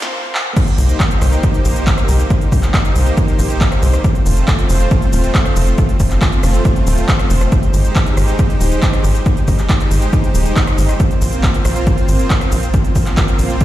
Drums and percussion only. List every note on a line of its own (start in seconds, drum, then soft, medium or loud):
0.02 snare loud
0.02 closed hi-hat medium
0.02 shaker soft
0.35 clap medium
0.57 kick loud
0.57 closed hi-hat medium
0.57 crash loud
0.57 shaker soft
0.67 closed hi-hat medium
0.67 shaker soft
0.78 open hi-hat loud
0.78 shaker medium
0.89 closed hi-hat medium
0.89 shaker soft
1.00 kick loud
1.00 clap loud
1.00 closed hi-hat medium
1.00 shaker soft
1.11 closed hi-hat medium
1.11 shaker soft
1.22 cross-stick medium
1.22 open hi-hat loud
1.22 shaker medium
1.33 closed hi-hat medium
1.33 shaker soft
1.43 kick loud
1.43 closed hi-hat medium
1.43 shaker soft
1.54 closed hi-hat medium
1.54 shaker soft
1.65 open hi-hat loud
1.65 shaker medium
1.76 closed hi-hat medium
1.76 shaker soft
1.87 kick loud
1.87 clap loud
1.87 closed hi-hat medium
1.87 shaker soft
1.98 cross-stick medium
1.98 closed hi-hat medium
1.98 shaker soft
2.09 open hi-hat loud
2.09 shaker medium
2.20 closed hi-hat medium
2.20 shaker soft
2.30 kick loud
2.30 closed hi-hat medium
2.30 shaker soft
2.41 closed hi-hat medium
2.41 shaker soft
2.52 kick medium
2.52 open hi-hat loud
2.52 shaker medium
2.63 clap soft
2.63 closed hi-hat medium
2.63 shaker soft
2.74 kick loud
2.74 clap loud
2.74 closed hi-hat medium
2.74 shaker soft
2.85 closed hi-hat medium
2.85 shaker soft
2.96 open hi-hat loud
2.96 shaker medium
3.07 closed hi-hat medium
3.07 shaker soft
3.17 kick loud
3.17 closed hi-hat medium
3.17 shaker soft
3.28 closed hi-hat medium
3.28 shaker soft
3.39 open hi-hat loud
3.39 shaker medium
3.50 closed hi-hat medium
3.50 shaker soft
3.61 kick loud
3.61 clap loud
3.61 closed hi-hat medium
3.61 shaker soft
3.72 cross-stick medium
3.72 closed hi-hat medium
3.72 shaker soft
3.83 open hi-hat loud
3.83 shaker medium
3.94 cross-stick medium
3.94 closed hi-hat medium
3.94 shaker soft
4.04 kick loud
4.04 closed hi-hat medium
4.04 shaker soft
4.15 closed hi-hat soft
4.15 shaker soft
4.26 open hi-hat loud
4.26 shaker medium
4.37 closed hi-hat medium
4.37 shaker soft
4.48 kick loud
4.48 clap loud
4.48 closed hi-hat medium
4.48 shaker soft
4.59 closed hi-hat medium
4.59 shaker soft
4.69 open hi-hat loud
4.69 shaker medium
4.80 closed hi-hat medium
4.80 shaker soft
4.91 kick loud
4.91 closed hi-hat medium
4.91 shaker soft
5.02 closed hi-hat medium
5.02 shaker soft
5.13 open hi-hat loud
5.13 shaker medium
5.24 closed hi-hat medium
5.24 shaker soft
5.35 kick loud
5.35 clap loud
5.35 closed hi-hat medium
5.35 shaker soft
5.46 cross-stick medium
5.46 closed hi-hat medium
5.46 shaker soft
5.56 open hi-hat loud
5.56 shaker medium
5.67 closed hi-hat medium
5.67 shaker soft
5.78 kick loud
5.78 closed hi-hat medium
5.78 shaker soft
5.89 closed hi-hat soft
5.89 shaker soft
6.00 kick medium
6.00 open hi-hat loud
6.00 shaker medium
6.11 clap soft
6.11 closed hi-hat medium
6.11 shaker soft
6.22 kick loud
6.22 clap loud
6.22 closed hi-hat medium
6.22 shaker soft
6.32 closed hi-hat medium
6.32 shaker soft
6.43 cross-stick medium
6.43 open hi-hat loud
6.43 shaker medium
6.54 closed hi-hat medium
6.54 shaker soft
6.65 kick loud
6.65 closed hi-hat medium
6.65 shaker soft
6.76 closed hi-hat medium
6.76 shaker soft
6.87 open hi-hat loud
6.87 shaker medium
6.98 closed hi-hat medium
6.98 shaker soft
7.09 kick loud
7.09 clap loud
7.09 closed hi-hat medium
7.09 shaker soft
7.19 cross-stick medium
7.19 closed hi-hat medium
7.19 shaker soft
7.30 open hi-hat loud
7.30 shaker medium
7.41 cross-stick medium
7.41 closed hi-hat medium
7.41 shaker soft
7.52 kick loud
7.52 closed hi-hat medium
7.52 shaker soft
7.63 closed hi-hat medium
7.63 shaker soft
7.74 open hi-hat loud
7.74 shaker medium
7.85 closed hi-hat medium
7.85 shaker soft
7.96 kick loud
7.96 clap loud
7.96 closed hi-hat medium
7.96 shaker soft
8.06 closed hi-hat medium
8.06 shaker soft
8.17 cross-stick medium
8.17 open hi-hat loud
8.17 shaker medium
8.28 closed hi-hat medium
8.28 shaker soft
8.39 kick loud
8.39 closed hi-hat medium
8.39 shaker soft
8.50 closed hi-hat medium
8.50 shaker soft
8.61 open hi-hat loud
8.61 shaker medium
8.72 closed hi-hat medium
8.72 shaker soft
8.83 kick loud
8.83 clap loud
8.83 closed hi-hat medium
8.83 shaker soft
8.93 cross-stick medium
8.93 closed hi-hat medium
8.93 shaker soft
9.04 open hi-hat loud
9.04 shaker medium
9.15 closed hi-hat medium
9.15 shaker soft
9.26 kick loud
9.26 closed hi-hat medium
9.26 shaker soft
9.37 closed hi-hat soft
9.37 shaker soft
9.48 kick medium
9.48 open hi-hat loud
9.48 shaker medium
9.59 clap soft
9.59 closed hi-hat medium
9.59 shaker soft
9.69 kick loud
9.69 clap loud
9.69 closed hi-hat medium
9.69 shaker soft
9.80 closed hi-hat medium
9.80 shaker soft
9.91 open hi-hat loud
9.91 shaker medium
10.02 closed hi-hat medium
10.02 shaker soft
10.13 kick loud
10.13 closed hi-hat medium
10.13 shaker soft
10.24 closed hi-hat medium
10.24 shaker soft
10.35 open hi-hat loud
10.35 shaker medium
10.46 closed hi-hat medium
10.46 shaker soft
10.56 kick loud
10.56 clap loud
10.56 closed hi-hat medium
10.56 shaker soft
10.67 cross-stick medium
10.67 closed hi-hat medium
10.67 shaker soft
10.78 open hi-hat loud
10.78 shaker medium
10.89 cross-stick medium
10.89 closed hi-hat medium
10.89 shaker soft
11.00 kick loud
11.00 closed hi-hat medium
11.00 shaker soft
11.11 closed hi-hat medium
11.11 shaker soft
11.22 open hi-hat loud
11.22 shaker medium
11.33 closed hi-hat medium
11.33 shaker soft
11.43 kick loud
11.43 clap loud
11.43 closed hi-hat medium
11.43 shaker soft
11.54 closed hi-hat medium
11.54 shaker soft
11.65 cross-stick medium
11.65 open hi-hat loud
11.65 shaker medium
11.76 closed hi-hat medium
11.76 shaker soft
11.87 kick loud
11.87 closed hi-hat medium
11.87 shaker soft
11.98 closed hi-hat medium
11.98 shaker soft
12.09 open hi-hat loud
12.09 shaker medium
12.19 closed hi-hat medium
12.19 shaker soft
12.30 kick loud
12.30 clap loud
12.30 closed hi-hat medium
12.30 shaker soft
12.41 cross-stick medium
12.41 closed hi-hat medium
12.41 shaker soft
12.52 open hi-hat loud
12.52 shaker medium
12.63 closed hi-hat medium
12.63 shaker soft
12.74 kick loud
12.74 closed hi-hat medium
12.74 shaker soft
12.85 closed hi-hat medium
12.85 shaker soft
12.96 kick medium
12.96 open hi-hat loud
12.96 shaker medium
13.06 clap soft
13.06 closed hi-hat medium
13.06 shaker soft
13.17 kick loud
13.17 clap loud
13.17 closed hi-hat medium
13.17 shaker soft
13.28 closed hi-hat medium
13.28 shaker soft
13.39 open hi-hat loud
13.39 shaker medium
13.50 closed hi-hat medium
13.50 shaker soft
13.61 kick loud
13.61 closed hi-hat medium
13.61 shaker soft